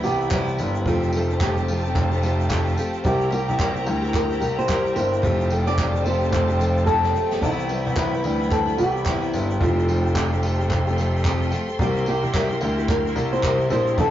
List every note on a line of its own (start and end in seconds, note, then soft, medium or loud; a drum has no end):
0.00 5.19 C4 medium
0.00 0.84 E4 medium
0.00 0.88 G4 medium
0.00 0.84 G5 medium
0.00 0.83 B5 medium
0.00 tambourine medium
0.04 0.55 C2 medium
0.04 0.30 E3 medium
0.04 0.30 G3 medium
0.04 0.31 B3 medium
0.04 0.31 E4 medium
0.04 shaker medium
0.21 shaker medium
0.30 0.58 C3 medium
0.30 0.57 E3 medium
0.30 0.59 G3 medium
0.30 0.59 B3 medium
0.30 0.59 E4 medium
0.30 kick loud
0.30 clap loud
0.30 shaker medium
0.48 shaker soft
0.58 0.84 G1 loud
0.58 0.75 E3 medium
0.58 0.76 G3 medium
0.58 0.76 B3 medium
0.58 tambourine medium
0.58 shaker medium
0.63 0.74 E4 medium
0.75 0.87 B3 soft
0.75 0.86 E4 soft
0.75 shaker medium
0.79 0.87 G3 soft
0.85 1.91 F1 medium
0.85 1.12 F3 medium
0.85 1.14 A3 medium
0.85 1.15 C4 medium
0.85 3.02 F4 medium
0.85 1.37 F4 medium
0.85 13.93 G5 medium
0.85 3.02 A5 medium
0.85 kick loud
0.85 shaker medium
0.89 1.15 G4 medium
1.03 shaker medium
1.13 1.30 F3 medium
1.13 1.31 A3 medium
1.13 1.31 C4 medium
1.13 tambourine medium
1.17 1.28 G4 medium
1.30 1.41 A3 soft
1.30 1.42 C4 medium
1.30 1.41 G4 medium
1.30 shaker soft
1.40 1.57 F3 medium
1.40 1.58 A3 medium
1.40 1.58 C4 medium
1.40 2.74 G4 medium
1.40 1.57 G4 medium
1.40 kick loud
1.40 clap loud
1.40 shaker medium
1.57 1.69 C4 medium
1.57 1.69 G4 medium
1.57 shaker soft
1.61 1.69 A3 soft
1.68 1.85 F3 medium
1.68 1.85 A3 medium
1.68 1.86 C4 medium
1.68 1.83 G4 medium
1.68 tambourine medium
1.84 2.14 A3 soft
1.84 2.12 C4 medium
1.84 2.11 G4 medium
1.84 shaker soft
1.95 2.73 F1 loud
1.95 kick loud
1.95 clap medium
1.95 shaker medium
2.12 2.22 A3 soft
2.12 2.24 C4 medium
2.12 2.23 G4 medium
2.12 shaker soft
2.22 2.48 F3 medium
2.22 2.49 A3 medium
2.22 2.49 C4 medium
2.22 2.50 G4 medium
2.22 tambourine medium
2.22 shaker medium
2.40 shaker medium
2.49 2.75 F3 medium
2.49 2.76 A3 loud
2.49 2.77 C4 medium
2.49 2.78 G4 loud
2.49 kick loud
2.49 clap medium
2.49 shaker medium
2.67 shaker soft
2.76 3.04 F3 medium
2.76 3.05 A3 medium
2.76 3.05 C4 medium
2.76 3.05 G4 medium
2.76 tambourine medium
2.76 shaker medium
2.94 shaker medium
3.04 3.45 C2 loud
3.04 3.32 C3 medium
3.04 3.29 G3 medium
3.04 3.31 A#3 medium
3.04 5.21 E4 medium
3.04 3.32 E4 medium
3.04 3.33 G4 medium
3.04 3.31 G4 loud
3.04 5.21 A#5 medium
3.04 kick loud
3.04 shaker medium
3.21 shaker medium
3.30 3.48 G3 medium
3.30 3.48 A#3 medium
3.30 3.49 E4 medium
3.30 3.83 G4 loud
3.30 3.47 G4 medium
3.30 tambourine medium
3.48 3.84 C2 loud
3.48 3.59 A#3 medium
3.48 3.59 E4 medium
3.48 3.59 G4 medium
3.48 shaker soft
3.59 3.75 C3 medium
3.59 3.76 G3 medium
3.59 3.76 A#3 medium
3.59 3.76 E4 medium
3.59 3.74 G4 medium
3.59 kick loud
3.59 clap loud
3.59 shaker medium
3.76 3.87 A#3 soft
3.76 3.87 E4 soft
3.76 3.87 G4 medium
3.76 shaker soft
3.86 4.37 D2 medium
3.86 4.03 G3 medium
3.86 4.04 A#3 medium
3.86 4.04 E4 medium
3.86 4.01 G4 medium
3.86 tambourine medium
4.02 4.31 E4 medium
4.02 4.29 G4 medium
4.02 shaker soft
4.06 4.32 A#3 medium
4.14 4.56 A#4 loud
4.14 kick loud
4.14 clap medium
4.14 shaker medium
4.31 4.40 A#3 soft
4.31 4.41 E4 medium
4.31 4.41 G4 medium
4.31 shaker soft
4.40 4.92 C2 medium
4.40 4.67 G3 medium
4.40 4.68 A#3 medium
4.40 4.68 E4 medium
4.40 4.68 G4 medium
4.40 tambourine medium
4.40 shaker medium
4.59 4.95 C5 loud
4.59 shaker medium
4.67 4.95 C3 medium
4.67 4.94 G3 medium
4.67 4.95 A#3 medium
4.67 4.96 E4 medium
4.67 4.96 G4 medium
4.67 kick loud
4.67 clap loud
4.67 shaker medium
4.86 shaker soft
4.96 5.21 G1 medium
4.96 5.22 G3 medium
4.96 5.23 A#3 medium
4.96 5.23 E4 medium
4.96 5.24 G4 medium
4.96 5.67 C5 loud
4.96 tambourine medium
4.96 shaker soft
5.13 shaker medium
5.22 6.29 F1 loud
5.22 5.49 F3 medium
5.22 5.51 A3 medium
5.22 9.56 C4 medium
5.22 5.51 C4 medium
5.22 7.40 F4 medium
5.22 5.51 G4 medium
5.22 7.39 A5 medium
5.22 kick loud
5.22 shaker medium
5.40 shaker medium
5.50 5.67 F3 medium
5.50 5.68 A3 medium
5.50 5.68 C4 medium
5.50 5.65 G4 medium
5.50 tambourine medium
5.67 5.77 A3 medium
5.67 5.78 C4 medium
5.67 5.78 G4 medium
5.67 6.06 D5 loud
5.67 shaker medium
5.77 5.94 F3 medium
5.77 5.95 A3 medium
5.77 5.95 C4 medium
5.77 5.93 G4 loud
5.77 kick loud
5.77 clap loud
5.77 shaker medium
5.94 6.05 A3 soft
5.94 6.06 C4 medium
5.94 6.05 G4 medium
5.94 shaker soft
6.04 6.21 F3 medium
6.04 6.22 A3 medium
6.04 6.22 C4 medium
6.04 6.20 G4 medium
6.04 6.30 C5 loud
6.04 tambourine medium
6.21 6.50 A3 soft
6.21 6.49 C4 medium
6.21 6.47 G4 medium
6.21 shaker soft
6.32 7.11 F1 loud
6.32 6.83 C5 loud
6.32 kick loud
6.32 clap medium
6.32 shaker medium
6.48 6.59 A3 soft
6.48 6.60 C4 medium
6.48 6.60 G4 medium
6.48 shaker medium
6.59 6.85 F3 medium
6.59 6.86 A3 medium
6.59 6.87 C4 medium
6.59 6.88 G4 medium
6.59 tambourine medium
6.59 shaker medium
6.77 shaker medium
6.86 7.13 F3 medium
6.86 7.15 A3 medium
6.86 7.15 C4 medium
6.86 7.16 G4 medium
6.86 7.27 A4 loud
6.86 kick loud
6.86 shaker medium
7.04 snare medium
7.04 shaker soft
7.15 7.42 F3 medium
7.15 7.43 A3 medium
7.15 7.43 C4 medium
7.15 7.44 G4 medium
7.15 shaker medium
7.31 snare medium
7.31 shaker medium
7.41 7.82 C2 loud
7.41 7.69 C3 medium
7.41 7.68 E3 medium
7.41 7.69 G3 medium
7.41 7.70 B3 medium
7.41 7.98 E4 loud
7.41 9.59 E4 medium
7.41 7.70 E4 medium
7.41 9.59 B5 medium
7.41 kick medium
7.41 crash medium
7.41 shaker medium
7.60 shaker medium
7.69 7.86 E3 medium
7.69 7.86 G3 medium
7.69 7.86 B3 medium
7.69 tambourine medium
7.73 7.84 E4 medium
7.85 8.21 C2 medium
7.85 7.95 G3 soft
7.85 7.96 B3 medium
7.85 7.96 E4 medium
7.85 shaker soft
7.96 8.13 C3 medium
7.96 8.13 E3 medium
7.96 8.13 G3 medium
7.96 8.13 B3 medium
7.96 8.11 E4 medium
7.96 8.47 B4 loud
7.96 kick loud
7.96 clap loud
7.96 shaker medium
8.12 8.24 G3 soft
8.12 8.25 B3 medium
8.12 8.24 E4 medium
8.12 shaker soft
8.23 8.75 D2 medium
8.23 8.40 E3 medium
8.23 8.41 G3 medium
8.23 8.40 B3 medium
8.23 8.38 E4 medium
8.23 tambourine medium
8.39 8.68 G3 soft
8.39 8.67 B3 soft
8.39 8.65 E4 medium
8.39 shaker soft
8.51 8.77 A4 medium
8.51 kick loud
8.51 clap medium
8.51 shaker medium
8.66 8.79 G3 soft
8.66 8.79 B3 soft
8.66 8.78 E4 medium
8.66 shaker soft
8.78 9.30 C2 loud
8.78 9.06 E3 medium
8.78 9.07 G3 medium
8.78 9.07 B3 medium
8.78 9.63 G4 medium
8.78 tambourine medium
8.78 shaker medium
8.82 9.08 E4 medium
8.97 shaker medium
9.05 9.34 C3 medium
9.05 9.32 E3 medium
9.05 9.34 G3 medium
9.05 9.34 B3 medium
9.05 9.35 E4 medium
9.05 kick loud
9.05 clap loud
9.05 shaker medium
9.23 shaker soft
9.33 9.59 G1 loud
9.33 9.50 E3 medium
9.33 9.51 G3 medium
9.33 9.49 B3 medium
9.33 9.48 E4 medium
9.33 tambourine medium
9.33 shaker soft
9.49 9.61 G3 soft
9.49 9.61 B3 soft
9.49 9.60 E4 soft
9.49 shaker medium
9.60 10.66 F1 loud
9.60 9.87 F3 medium
9.60 9.88 A3 medium
9.60 9.89 C4 medium
9.60 11.77 F4 medium
9.60 10.12 F4 loud
9.60 9.89 G4 medium
9.60 11.77 A4 medium
9.60 14.11 C6 medium
9.60 kick loud
9.60 shaker medium
9.79 shaker medium
9.88 10.04 F3 medium
9.88 10.05 A3 medium
9.88 10.05 C4 medium
9.88 10.02 G4 medium
9.88 tambourine medium
10.04 10.16 C4 soft
10.04 10.15 G4 medium
10.04 shaker medium
10.08 10.16 A3 soft
10.15 10.32 F3 medium
10.15 10.33 A3 medium
10.15 10.33 C4 medium
10.15 11.48 G4 medium
10.15 10.31 G4 loud
10.15 kick loud
10.15 clap loud
10.15 shaker medium
10.32 10.43 A3 soft
10.32 10.44 C4 soft
10.32 10.43 G4 medium
10.32 shaker soft
10.42 10.59 F3 medium
10.42 10.60 A3 medium
10.42 10.60 C4 medium
10.42 10.57 G4 medium
10.42 tambourine medium
10.59 10.88 A3 medium
10.59 10.87 C4 medium
10.59 10.86 G4 medium
10.59 shaker soft
10.70 11.48 F1 loud
10.70 kick loud
10.70 clap medium
10.70 shaker medium
10.87 10.98 A3 medium
10.87 10.98 C4 medium
10.87 10.98 G4 medium
10.87 shaker soft
10.97 11.24 F3 medium
10.97 11.25 A3 medium
10.97 11.25 C4 medium
10.97 11.26 G4 medium
10.97 tambourine medium
10.97 shaker medium
11.17 shaker medium
11.25 11.49 F3 medium
11.25 11.51 A3 medium
11.25 11.52 C4 loud
11.25 11.53 G4 loud
11.25 kick loud
11.25 clap loud
11.25 shaker medium
11.42 shaker soft
11.51 11.68 F3 medium
11.51 11.68 A3 medium
11.51 11.69 C4 medium
11.51 11.67 G4 medium
11.51 tambourine medium
11.51 shaker soft
11.68 11.81 A3 soft
11.68 11.80 C4 soft
11.68 11.79 G4 soft
11.68 shaker medium
11.78 12.19 C2 loud
11.78 12.07 C3 medium
11.78 12.05 G3 medium
11.78 12.06 A#3 medium
11.78 14.11 E4 medium
11.78 12.07 E4 medium
11.78 11.88 G4 medium
11.78 13.95 A#4 medium
11.78 kick loud
11.78 shaker medium
11.83 12.09 G4 medium
11.96 shaker medium
12.06 12.23 G3 medium
12.06 12.23 A#3 medium
12.06 12.23 E4 medium
12.06 12.90 G4 medium
12.06 12.21 G4 medium
12.06 tambourine medium
12.23 12.61 C2 medium
12.23 12.33 A#3 soft
12.23 12.33 E4 medium
12.23 12.34 G4 medium
12.23 shaker soft
12.33 12.50 C3 medium
12.33 12.50 G3 medium
12.33 12.51 A#3 medium
12.33 12.50 E4 medium
12.33 12.48 G4 medium
12.33 kick loud
12.33 clap loud
12.33 shaker medium
12.49 12.61 A#3 soft
12.49 12.62 E4 soft
12.49 12.61 G4 medium
12.49 shaker soft
12.61 13.12 D2 medium
12.61 12.78 G3 medium
12.61 12.78 A#3 medium
12.61 12.79 E4 medium
12.61 12.77 G4 medium
12.61 tambourine medium
12.78 13.07 A#3 soft
12.78 13.06 E4 medium
12.78 13.04 G4 medium
12.78 shaker soft
12.88 13.32 A#4 loud
12.88 kick loud
12.88 clap medium
12.88 shaker medium
13.05 13.16 A#3 soft
13.05 13.17 E4 medium
13.05 13.16 G4 medium
13.05 shaker medium
13.15 13.66 C2 loud
13.15 13.42 G3 medium
13.15 13.43 A#3 medium
13.15 13.44 E4 medium
13.15 13.44 G4 medium
13.15 tambourine medium
13.15 shaker medium
13.33 13.68 C5 loud
13.33 shaker medium
13.43 13.70 C3 medium
13.43 13.68 G3 medium
13.43 13.70 A#3 medium
13.43 13.70 E4 medium
13.43 13.72 G4 medium
13.43 kick loud
13.43 clap loud
13.43 shaker medium
13.61 shaker soft
13.69 13.96 A#1 loud
13.69 13.97 G3 medium
13.69 13.98 A#3 medium
13.69 13.98 E4 medium
13.69 13.98 G4 medium
13.69 13.97 C5 loud
13.69 tambourine medium
13.69 shaker soft
13.87 shaker medium
13.97 14.11 C2 loud
13.97 14.11 C3 medium
13.97 14.11 E3 medium
13.97 14.11 G3 medium
13.97 14.11 D4 medium
13.97 14.11 G4 medium
13.97 14.11 A4 loud
13.97 14.11 D5 medium
13.97 14.11 G5 medium
13.97 kick loud
13.97 shaker medium